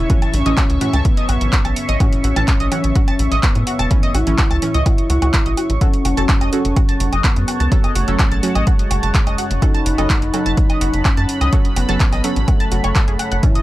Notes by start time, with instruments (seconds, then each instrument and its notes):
Already playing: synth drone F#2 C#3, analog synth lead E4, analog synth pad C#5 E5 C#6
0.10 synth stab A2 E3 C#4, synth arpeggio sound F#4, kick, closed hi-hat
0.22 synth arpeggio sound A5, closed hi-hat, low woodblock
0.34 analog synth bass A1, analog synth lead C#4, open hi-hat
0.46 analog synth bass A1, synth stab A2 E3 C#4, synth arpeggio sound D#5, closed hi-hat
0.57 synth arpeggio sound F#4, kick, clap, closed hi-hat, low woodblock
0.70 analog synth bass C#2, closed hi-hat
0.81 synth stab A2 E3 C#4, synth arpeggio sound F#4, open hi-hat
0.93 analog synth bass C#2, synth arpeggio sound A5, closed hi-hat, low woodblock
1.05 analog synth lead B3, kick, closed hi-hat
1.17 synth arpeggio sound D#5, closed hi-hat
1.29 analog synth bass A1, synth arpeggio sound F#4, open hi-hat, low woodblock
1.41 analog synth bass A1, closed hi-hat
1.53 synth arpeggio sound F#4, kick, clap, closed hi-hat
1.65 analog synth bass A1, synth arpeggio sound A5, closed hi-hat, low woodblock
1.76 open hi-hat
1.89 analog synth bass A1, synth arpeggio sound D#5, closed hi-hat
2.00 synth stab A2 E3 C#4, analog synth lead C#4, synth arpeggio sound F#4, kick, closed hi-hat, low woodblock
2.13 closed hi-hat
2.24 analog synth bass A1, synth arpeggio sound F#4, open hi-hat
2.36 analog synth bass A1, synth stab A2 E3 C#4, synth arpeggio sound A5, closed hi-hat, low woodblock
2.48 kick, clap, closed hi-hat
2.60 analog synth bass A1, synth arpeggio sound D#5, closed hi-hat
2.72 synth stab A2 E3 C#4, synth arpeggio sound F#4, open hi-hat, low woodblock
2.84 analog synth bass A1, closed hi-hat
2.95 synth arpeggio sound F#4, kick, closed hi-hat
3.08 synth arpeggio sound A5, closed hi-hat, low woodblock
3.19 analog synth bass A1, open hi-hat
3.32 analog synth bass A1, synth arpeggio sound D#5, closed hi-hat
3.43 analog synth lead B3, synth arpeggio sound F#4, kick, clap, closed hi-hat, low woodblock
3.55 analog synth bass A2, closed hi-hat
3.67 synth arpeggio sound F#4, open hi-hat
3.79 analog synth bass E1, synth arpeggio sound A5, closed hi-hat, low woodblock
3.91 synth stab A2 E3 C#4, kick, closed hi-hat
4.03 synth arpeggio sound D#5, closed hi-hat
4.15 analog synth bass A1, analog synth lead E4, synth arpeggio sound F#4, open hi-hat, low woodblock
4.27 analog synth bass A1, synth stab A2 E3 C#4, closed hi-hat
4.38 synth arpeggio sound F#4, kick, clap, closed hi-hat
4.51 analog synth bass C#2, synth arpeggio sound A5, open hi-hat, low woodblock
4.62 synth stab A2 E3 C#4, open hi-hat
4.74 analog synth bass C#2, synth arpeggio sound D#5, closed hi-hat
4.86 analog synth lead E4, synth arpeggio sound F#4, kick, closed hi-hat, low woodblock
4.98 closed hi-hat
5.10 analog synth bass C#2, synth arpeggio sound F#4, open hi-hat
5.22 analog synth bass C#2, synth arpeggio sound F#4, closed hi-hat, low woodblock
5.34 kick, clap, closed hi-hat
5.46 analog synth bass A1, synth arpeggio sound D#5, closed hi-hat
5.57 synth arpeggio sound F#4, open hi-hat, low woodblock
5.70 analog synth bass A1, closed hi-hat
5.81 synth drone F#2 C#3, synth stab F#3 C#4 A4, analog synth lead C#4, synth arpeggio sound F#4, analog synth pad C#5 F#5 A5, kick, closed hi-hat
5.94 closed hi-hat
6.05 analog synth bass F#1, synth arpeggio sound F#4, open hi-hat, low woodblock
6.17 analog synth bass F#1, synth stab F#3 C#4 A4, synth arpeggio sound A5, closed hi-hat
6.29 kick, clap, closed hi-hat
6.41 analog synth bass F#1, synth arpeggio sound D#5, closed hi-hat, low woodblock
6.53 synth stab F#3 C#4 A4, synth arpeggio sound F#4, open hi-hat
6.65 analog synth bass F#1, closed hi-hat
6.76 synth arpeggio sound F#4, kick, closed hi-hat, low woodblock
6.89 synth arpeggio sound A5, closed hi-hat
7.00 analog synth bass F#1, open hi-hat
7.13 analog synth bass F#1, synth arpeggio sound D#5, closed hi-hat, low woodblock
7.24 analog synth lead B3, synth arpeggio sound F#4, kick, clap, closed hi-hat
7.36 analog synth bass F#2, closed hi-hat
7.48 synth arpeggio sound F#4, open hi-hat, low woodblock
7.60 analog synth bass C#2, synth arpeggio sound A5, closed hi-hat
7.72 synth stab F#3 C#4 A4, kick, closed hi-hat
7.84 synth arpeggio sound D#5, closed hi-hat, low woodblock
7.95 analog synth bass F#1, analog synth lead A3, synth arpeggio sound F#4, open hi-hat
8.08 analog synth bass F#1, synth stab F#3 C#4 A4, closed hi-hat
8.19 synth arpeggio sound F#4, kick, clap, closed hi-hat, low woodblock
8.32 analog synth bass A1, synth arpeggio sound A5, closed hi-hat
8.43 synth stab F#3 C#4 F#4, open hi-hat
8.55 analog synth bass A1, synth arpeggio sound D#5, closed hi-hat, low woodblock
8.67 analog synth lead G#3, synth arpeggio sound F#4, kick, closed hi-hat
8.79 closed hi-hat
8.91 analog synth bass F#1, synth arpeggio sound F#4, open hi-hat, low woodblock
9.03 analog synth bass F#1, synth arpeggio sound A5, closed hi-hat
9.15 kick, clap, closed hi-hat
9.27 analog synth bass F#1, synth arpeggio sound D#5, closed hi-hat, low woodblock
9.38 synth arpeggio sound F#4, open hi-hat
9.51 analog synth bass F#1, closed hi-hat
9.62 synth stab F#3 C#4 A4, analog synth lead D#4, synth arpeggio sound F#4, analog synth pad B5, kick, closed hi-hat, low woodblock
9.74 synth arpeggio sound A5, closed hi-hat
9.86 analog synth bass F#1, open hi-hat
9.98 analog synth bass F#1, synth stab F#3 C#4 A4, synth arpeggio sound D#5, closed hi-hat, low woodblock
10.10 synth arpeggio sound F#4, kick, clap, closed hi-hat
10.22 analog synth bass F#1, closed hi-hat
10.34 synth stab F#3 C#4 A4, synth arpeggio sound F#4, open hi-hat, low woodblock
10.46 analog synth bass F#1, synth arpeggio sound A5, closed hi-hat
10.57 kick, closed hi-hat
10.70 synth arpeggio sound D#5, closed hi-hat, low woodblock
10.81 analog synth bass F#1, synth arpeggio sound F#4, open hi-hat
10.93 analog synth bass F#1, closed hi-hat
11.05 analog synth lead C#4, synth arpeggio sound F#4, kick, clap, closed hi-hat, low woodblock
11.17 analog synth bass F#2, synth arpeggio sound A5, closed hi-hat
11.29 open hi-hat
11.41 analog synth bass C#2, synth arpeggio sound D#5, closed hi-hat, low woodblock
11.53 synth stab F#3 C#4 A4, synth arpeggio sound F#4, kick, closed hi-hat
11.65 closed hi-hat
11.76 analog synth bass F#1, analog synth lead B3, synth arpeggio sound F#4, open hi-hat, low woodblock
11.89 analog synth bass F#1, synth stab F#3 C#4 A4, synth arpeggio sound A5, closed hi-hat
12.00 kick, clap, closed hi-hat
12.13 analog synth bass A1, synth arpeggio sound D#5, open hi-hat, low woodblock
12.24 synth stab F#3 C#4 A4, synth arpeggio sound F#4, open hi-hat
12.36 analog synth bass A1, closed hi-hat
12.48 analog synth lead A3, synth arpeggio sound F#4, kick, closed hi-hat, low woodblock
12.60 synth arpeggio sound A5, closed hi-hat
12.72 analog synth bass F#1, synth arpeggio sound F#4, open hi-hat
12.84 analog synth bass F#1, synth arpeggio sound C#5, closed hi-hat, low woodblock
12.95 synth arpeggio sound A4, kick, clap, closed hi-hat
13.08 analog synth bass F#1, synth arpeggio sound G#4, closed hi-hat
13.19 synth arpeggio sound F#5, open hi-hat, low woodblock
13.32 analog synth bass F#1, synth arpeggio sound F#5, closed hi-hat
13.43 synth stab A2 E3 C#4, analog synth lead E4, analog synth pad C#5 E5 C#6, kick, closed hi-hat
13.55 synth arpeggio sound D#5, closed hi-hat